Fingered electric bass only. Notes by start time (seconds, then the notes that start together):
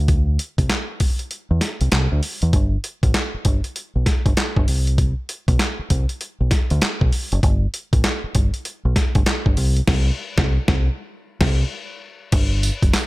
Already playing: D2
0.59 C2
1.51 E2
1.81 C2
1.92 C2
2.12 D2
2.43 E2
2.53 G1
3.03 A1
3.34 muted fingered electric bass stroke
3.46 G1
3.96 B1
4.26 G1
4.57 G1
4.68 C2
5.48 B1
5.79 muted fingered electric bass stroke
5.91 C2
6.41 B1
6.71 D2
6.82 muted fingered electric bass stroke
7.02 B1
7.32 F#1
7.43 G1
7.93 A1
8.24 muted fingered electric bass stroke
8.35 G1
8.85 B1
9.16 G1
9.27 muted fingered electric bass stroke
9.46 G1
9.57 C2
9.88 C2
10.38 C2
10.68 C2
11.41 C2
12.33 G1
12.83 F#1